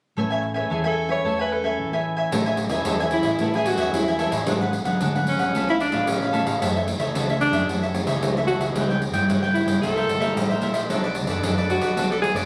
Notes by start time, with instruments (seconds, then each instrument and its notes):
0.17 fingered electric bass A1, nylon-string guitar A3 C#4 G#4 B4, cavaquinho A4 C#5 E5 G#5
0.30 cavaquinho C#5 E5 G#5
0.43 muted cavaquinho stroke
0.54 nylon-string guitar C#4 G#4 B4, cavaquinho C#5 E5 G#5
0.70 fingered electric bass E2, nylon-string guitar E3, alto saxophone G#4, cavaquinho A4 C#5 E5 G#5
0.84 nylon-string guitar C#4 G#4 B4, alto saxophone A4, cavaquinho C#5 E5 G#5
1.09 nylon-string guitar C#4 G#4 B4, alto saxophone C#5, cavaquinho C#5 E5 G#5
1.24 fingered electric bass E2, nylon-string guitar A3 C#4 G#4 B4, cavaquinho A4 C#5 E5 G#5
1.39 alto saxophone B4, cavaquinho C#5 E5 G#5
1.52 alto saxophone A4, muted cavaquinho stroke
1.63 nylon-string guitar C#4 G#4 B4, cavaquinho C#5 E5 G#5
1.78 fingered electric bass A1, nylon-string guitar E3
1.92 nylon-string guitar C#4 G#4 B4, cavaquinho C#5 E5 G#5
2.17 cavaquinho C#5 E5 G#5
2.32 fingered electric bass A1, nylon-string guitar A3 C#4 G#4 B4, cavaquinho A4 C#5 E5 G#5, pandeiro
2.46 cavaquinho C#5 E5 G#5, pandeiro
2.57 muted cavaquinho stroke, pandeiro
2.69 fingered electric bass E2, nylon-string guitar C#4 G#4 B4, cavaquinho C#5 E5 G#5, pandeiro
2.85 fingered electric bass E2, nylon-string guitar E3, cavaquinho A4 C#5 E5 G#5, pandeiro
3.00 nylon-string guitar C#4 G#4 B4, cavaquinho C#5 E5 G#5, pandeiro
3.11 alto saxophone E4, pandeiro
3.23 fingered electric bass A1, cavaquinho E5 G#5, pandeiro
3.27 cavaquinho C#5
3.39 fingered electric bass A1, nylon-string guitar A3 C#4 G#4 B4, cavaquinho A4 C#5, pandeiro
3.43 cavaquinho E5 G#5
3.54 alto saxophone G#4, cavaquinho E5 G#5, pandeiro
3.58 cavaquinho C#5
3.66 alto saxophone F#4, muted cavaquinho stroke, pandeiro
3.77 fingered electric bass E2, nylon-string guitar C#4 G#4 B4, cavaquinho C#5 E5 G#5, pandeiro
3.93 fingered electric bass E2, nylon-string guitar E3, alto saxophone E4, pandeiro
4.08 cavaquinho C#5 E5 G#5, pandeiro
4.19 nylon-string guitar C#4 G#4 B4, cavaquinho A4 C#5 E5 G#5, pandeiro
4.31 fingered electric bass A1, cavaquinho C#5 E5 G#5, pandeiro
4.46 fingered electric bass G#1, nylon-string guitar G#2 F#3 B3 D4, cavaquinho D4 G#4 B4 F#5, pandeiro
4.61 cavaquinho G#4 B4 F#5, pandeiro
4.73 muted cavaquinho stroke, pandeiro
4.85 fingered electric bass D2, nylon-string guitar F#3 B3 D4, cavaquinho G#4 B4 F#5, pandeiro
5.01 fingered electric bass D2, nylon-string guitar G#2, cavaquinho D4 G#4 B4 F#5, pandeiro
5.14 nylon-string guitar F#3 B3 D4, cavaquinho G#4 B4 F#5, pandeiro
5.27 alto saxophone C#4, pandeiro
5.38 fingered electric bass B1, cavaquinho G#4 B4 F#5, pandeiro
5.54 fingered electric bass C#2, nylon-string guitar C#3 A3 B3 F4, cavaquinho A4 C#5 F5 B5, pandeiro
5.69 alto saxophone E4, cavaquinho C#5 F5 B5, pandeiro
5.80 alto saxophone D4, muted cavaquinho stroke, pandeiro
5.92 fingered electric bass A1, nylon-string guitar A3 B3 F4, cavaquinho C#5 F5 B5, pandeiro
6.07 fingered electric bass A1, nylon-string guitar C#3, alto saxophone C#4, pandeiro
6.22 cavaquinho C#5 F5 B5, pandeiro
6.33 nylon-string guitar A3 B3 F4, cavaquinho A4 C#5 F5 B5, pandeiro
6.45 fingered electric bass A1, cavaquinho C#5 F5 B5, pandeiro
6.60 nylon-string guitar F#2 E3 A3 C#4, fingered electric bass F#2, cavaquinho F#4 A4 C#5 E5, pandeiro
6.76 cavaquinho A4 C#5 E5, pandeiro
6.86 nylon-string guitar E3 A3 C#4, muted cavaquinho stroke, pandeiro
6.99 fingered electric bass C#2, cavaquinho A4 C#5 E5, pandeiro
7.14 fingered electric bass C#2, nylon-string guitar C#3, cavaquinho F#4 A4 C#5 E5, pandeiro
7.28 nylon-string guitar E3 A3 C#4, cavaquinho C#5 E5, pandeiro
7.32 cavaquinho A4
7.41 alto saxophone D4, pandeiro
7.51 fingered electric bass F#2, nylon-string guitar E3 A3 C#4, cavaquinho A4 C#5 E5, pandeiro
7.67 fingered electric bass F#2, nylon-string guitar F#2 E3 A3 C#4, cavaquinho F#4 A4, pandeiro
7.71 cavaquinho C#5 E5
7.83 cavaquinho A4 C#5 E5, pandeiro
7.93 nylon-string guitar E3 A3 C#4, muted cavaquinho stroke, pandeiro
8.05 fingered electric bass C#2, cavaquinho C#5 E5, pandeiro
8.10 cavaquinho A4
8.21 fingered electric bass C#2, nylon-string guitar C#3, pandeiro
8.35 nylon-string guitar E3 A3 C#4, cavaquinho C#5 E5, pandeiro
8.40 cavaquinho A4
8.47 alto saxophone F#4, cavaquinho F#4 A4 C#5 E5, pandeiro
8.59 fingered electric bass C#2, cavaquinho A4 C#5 E5, pandeiro
8.74 fingered electric bass C#2, nylon-string guitar C#3 G3 B3 E4, cavaquinho E4 B4 C#5 G5, pandeiro
8.90 cavaquinho B4 C#5 G5, pandeiro
9.01 muted cavaquinho stroke, pandeiro
9.12 fingered electric bass G2, nylon-string guitar G3 B3 E4, cavaquinho B4 C#5 G5, pandeiro
9.28 fingered electric bass G2, nylon-string guitar C#3, cavaquinho E4 B4 C#5 G5, pandeiro
9.42 nylon-string guitar G3 B3 E4, cavaquinho B4 C#5 G5, pandeiro
9.54 alto saxophone E4, pandeiro
9.65 fingered electric bass G2, cavaquinho B4 C#5 G5, pandeiro
9.81 fingered electric bass C2, nylon-string guitar C3 A#3 E4 A4, cavaquinho E4 A#4 C5 E5, alto saxophone A4, pandeiro
9.96 cavaquinho A#4 C5 E5, pandeiro
10.07 fingered electric bass G1, muted cavaquinho stroke, pandeiro
10.20 nylon-string guitar A#3 E4 A4, cavaquinho A#4 C5 E5, pandeiro
10.35 fingered electric bass A1, nylon-string guitar G3, pandeiro
10.49 cavaquinho A#4 C5 E5, pandeiro
10.61 fingered electric bass A#1, nylon-string guitar A#3 E4 A4, cavaquinho E4 A#4 C5 E5, pandeiro
10.74 cavaquinho A#4 C5 E5, pandeiro
10.89 fingered electric bass B1, nylon-string guitar B3 D4 A4 C#5, cavaquinho D4 A4 B4 D5, pandeiro
11.04 cavaquinho A4 B4 D5, pandeiro
11.15 muted cavaquinho stroke, pandeiro
11.27 fingered electric bass F#2, nylon-string guitar D4 A4 C#5, cavaquinho A4 B4 D5, pandeiro
11.43 nylon-string guitar F#3, cavaquinho D4 A4 B4 D5, pandeiro
11.58 nylon-string guitar D4 A4 C#5, cavaquinho A4 B4 D5, pandeiro
11.70 alto saxophone F#4, pandeiro
11.81 fingered electric bass B1, cavaquinho A4 B4 D5, pandeiro
11.96 fingered electric bass B1, nylon-string guitar B3 D4 A4 C#5, cavaquinho D4 A4 B4 D5, pandeiro
12.11 alto saxophone A4, cavaquinho A4 B4 D5, pandeiro
12.22 alto saxophone G#4, muted cavaquinho stroke, pandeiro
12.34 fingered electric bass F#2, nylon-string guitar D4 A4 C#5, cavaquinho A4 B4 D5, pandeiro